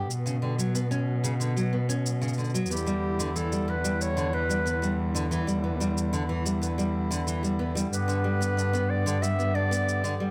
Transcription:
0.10 cello B2, harmonium B3, shaker
0.26 nylon-string guitar C#3, shaker
0.42 nylon-string guitar D3
0.58 nylon-string guitar F#3, shaker
0.75 nylon-string guitar B3, shaker
0.91 nylon-string guitar C#4, shaker
1.24 nylon-string guitar C#3, shaker
1.40 nylon-string guitar D3, shaker
1.56 nylon-string guitar F#3, shaker
1.73 nylon-string guitar B3
1.89 nylon-string guitar C#4, shaker
2.06 shaker
2.21 nylon-string guitar C#3, shaker
2.28 shaker
2.33 shaker
2.38 nylon-string guitar D3, shaker
2.44 shaker
2.50 shaker
2.54 nylon-string guitar F#3, shaker
2.66 shaker
2.70 cello E2, harmonium D3 G3 E4, nylon-string guitar B3, clarinet G4, shaker
2.77 shaker
2.86 nylon-string guitar G3, shaker
3.19 nylon-string guitar D3, shaker
3.36 nylon-string guitar E3, clarinet A4, shaker
3.52 nylon-string guitar G3, shaker
3.68 nylon-string guitar B3, clarinet B4
3.84 nylon-string guitar G3, shaker
4.01 clarinet C#5, shaker
4.17 nylon-string guitar D3, shaker
4.33 nylon-string guitar E3, clarinet B4
4.49 nylon-string guitar G3, shaker
4.66 nylon-string guitar B3, shaker
4.82 nylon-string guitar G3, shaker
5.15 nylon-string guitar D3, shaker
5.31 nylon-string guitar E3, shaker
5.47 nylon-string guitar G3, shaker
5.64 nylon-string guitar B3
5.80 nylon-string guitar G3, shaker
5.98 shaker
6.13 nylon-string guitar D3, shaker
6.29 nylon-string guitar E3
6.45 nylon-string guitar G3, shaker
6.62 nylon-string guitar B3, shaker
6.78 nylon-string guitar G3, shaker
7.11 nylon-string guitar D3, shaker
7.27 nylon-string guitar E3, shaker
7.43 nylon-string guitar G3, shaker
7.59 nylon-string guitar B3
7.75 nylon-string guitar G3, shaker
7.92 cello G2, harmonium B3 G4, clarinet B4, shaker
8.08 nylon-string guitar D3, shaker
8.24 nylon-string guitar G3
8.41 nylon-string guitar B3, shaker
8.57 nylon-string guitar D4, shaker
8.73 nylon-string guitar B3, shaker
8.90 clarinet D5
9.06 nylon-string guitar D3, shaker
9.22 nylon-string guitar G3, clarinet E5, shaker
9.39 nylon-string guitar B3, shaker
9.55 nylon-string guitar D4, clarinet D5
9.71 nylon-string guitar B3, shaker
9.89 shaker
10.04 nylon-string guitar D3, shaker
10.20 nylon-string guitar G3

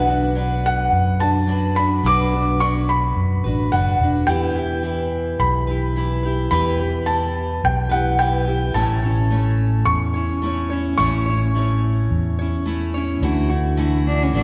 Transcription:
Already playing: fingered electric bass B1, felt piano F#5
0.07 steel-string acoustic guitar D4 F#4 B4
0.35 steel-string acoustic guitar F#3 D4 F#4 B4
0.66 felt piano F#5
0.92 fingered electric bass F#2
1.20 steel-string acoustic guitar D4 F#4 B4, felt piano A5
1.47 steel-string acoustic guitar F#3 D4 F#4 B4
1.75 steel-string acoustic guitar D4 F#4 B4, felt piano B5
2.03 fingered electric bass B1, steel-string acoustic guitar B2 F#3 D4 F#4 B4, felt piano D6
2.32 steel-string acoustic guitar D4 F#4 B4
2.60 steel-string acoustic guitar F#3 D4 F#4 B4, felt piano C#6
2.89 felt piano B5
3.16 fingered electric bass F#2
3.44 fingered electric bass A1, steel-string acoustic guitar D4 F#4 B4
3.72 fingered electric bass F#1, steel-string acoustic guitar F#3 D4 F#4, felt piano F#5
3.76 steel-string acoustic guitar B4
3.99 fingered electric bass E1, steel-string acoustic guitar F#4 B4
4.04 steel-string acoustic guitar D4
4.27 fingered electric bass E2, steel-string acoustic guitar E3 E4 G4 B4, felt piano G5
4.55 steel-string acoustic guitar E4 G4 B4
4.83 steel-string acoustic guitar E3 E4 G4 B4
5.39 fingered electric bass B1, felt piano B5
5.67 steel-string acoustic guitar E4 G4 B4
5.96 steel-string acoustic guitar E3 E4 G4 B4
6.23 steel-string acoustic guitar E4 G4 B4
6.51 fingered electric bass E2, steel-string acoustic guitar E3 E4 G4 B4, felt piano B5
6.79 steel-string acoustic guitar E4 G4 B4
7.06 steel-string acoustic guitar E3 E4 G4 B4, felt piano A5
7.64 fingered electric bass B1, felt piano G5
7.89 steel-string acoustic guitar E4 G4 B4, felt piano F#5
8.18 steel-string acoustic guitar E3 E4 G4 B4, felt piano G5
8.45 steel-string acoustic guitar E4 G4 B4
8.74 fingered electric bass A1, steel-string acoustic guitar A3 C#4 E4 C#5, felt piano A5
9.03 steel-string acoustic guitar C#4 E4 C#5
9.30 steel-string acoustic guitar A3 C#4 E4 C#5
9.85 fingered electric bass E2, felt piano C#6
10.14 steel-string acoustic guitar C#4 E4 C#5
10.42 steel-string acoustic guitar A3 C#4 E4 C#5
10.70 steel-string acoustic guitar C#4 E4 C#5
10.97 fingered electric bass A1, steel-string acoustic guitar A3 C#4 E4 C#5, felt piano C#6
11.26 steel-string acoustic guitar C#4 E4 C#5
11.55 steel-string acoustic guitar A3 C#4 E4 C#5
12.11 fingered electric bass E2
12.39 steel-string acoustic guitar C#4 E4 C#5
12.66 steel-string acoustic guitar A3 C#4 E4 C#5
12.94 steel-string acoustic guitar C#4 E4 C#5
13.21 fingered electric bass D2, steel-string acoustic guitar D3 E3 A3 E4 F#4
13.49 steel-string acoustic guitar A3 E4 F#4
13.77 steel-string acoustic guitar D3 E3 A3 E4 F#4
14.07 cello D4
14.23 cello C#4
14.33 fingered electric bass A1, steel-string acoustic guitar E3 A3 E4 F#4, cello D4

